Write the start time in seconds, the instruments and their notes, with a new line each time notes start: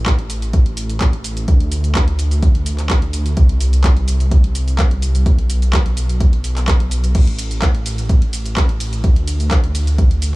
Already playing: detuned saw bass A1
0.06 kick, clap, closed hi-hat, shaker
0.19 closed hi-hat
0.30 open hi-hat, shaker
0.42 closed hi-hat, shaker
0.53 kick, closed hi-hat, shaker
0.66 closed hi-hat
0.77 open hi-hat, shaker
0.90 closed hi-hat, shaker
1.01 kick, clap, closed hi-hat, shaker
1.13 closed hi-hat
1.24 open hi-hat, shaker
1.37 closed hi-hat, shaker
1.48 detuned saw bass D2, kick, closed hi-hat, shaker
1.60 closed hi-hat
1.72 open hi-hat, shaker
1.84 closed hi-hat, shaker
1.95 kick, clap, closed hi-hat, shaker
2.08 closed hi-hat
2.19 open hi-hat, shaker
2.31 closed hi-hat, shaker
2.43 kick, closed hi-hat, shaker
2.55 closed hi-hat
2.66 open hi-hat, shaker
2.78 clap, closed hi-hat, shaker
2.90 kick, clap, closed hi-hat, shaker
3.02 closed hi-hat
3.13 open hi-hat, shaker
3.26 closed hi-hat, shaker
3.37 detuned saw bass C2, kick, closed hi-hat, shaker
3.49 closed hi-hat
3.61 open hi-hat, shaker
3.73 closed hi-hat, shaker
3.84 kick, clap, closed hi-hat, shaker
3.97 closed hi-hat
4.08 open hi-hat, shaker
4.20 closed hi-hat, shaker
4.31 kick, closed hi-hat, shaker
4.44 closed hi-hat
4.55 open hi-hat, shaker
4.68 closed hi-hat, shaker
4.79 kick, clap, closed hi-hat, shaker
4.91 closed hi-hat
5.02 open hi-hat, shaker
5.15 closed hi-hat, shaker
5.26 detuned saw bass B1, kick, closed hi-hat, shaker
5.39 closed hi-hat
5.50 open hi-hat, shaker
5.62 closed hi-hat, shaker
5.73 kick, clap, closed hi-hat, shaker
5.86 closed hi-hat
5.97 open hi-hat, shaker
6.09 closed hi-hat, shaker
6.20 kick, closed hi-hat, shaker
6.33 closed hi-hat
6.44 open hi-hat, shaker
6.56 clap, closed hi-hat, shaker
6.68 kick, clap, closed hi-hat, shaker
6.80 closed hi-hat
6.91 open hi-hat, shaker
7.04 closed hi-hat, shaker
7.15 detuned saw bass A1, kick, closed hi-hat, crash, shaker
7.27 closed hi-hat
7.39 open hi-hat, ride, shaker
7.51 closed hi-hat, shaker
7.62 kick, clap, closed hi-hat, shaker
7.75 closed hi-hat
7.86 open hi-hat, ride, shaker
7.98 closed hi-hat, shaker
8.09 kick, closed hi-hat, shaker
8.22 closed hi-hat
8.33 open hi-hat, ride, shaker
8.46 closed hi-hat, shaker
8.56 kick, clap, closed hi-hat, shaker
8.69 closed hi-hat
8.80 open hi-hat, ride, shaker
8.93 closed hi-hat, shaker
9.04 detuned saw bass D2, kick, closed hi-hat, shaker
9.16 closed hi-hat
9.28 open hi-hat, ride, shaker
9.40 closed hi-hat, shaker
9.51 kick, clap, closed hi-hat, shaker
9.64 closed hi-hat
9.75 open hi-hat, ride, shaker
9.87 closed hi-hat, shaker
9.98 kick, closed hi-hat, shaker
10.11 closed hi-hat
10.22 open hi-hat, ride, shaker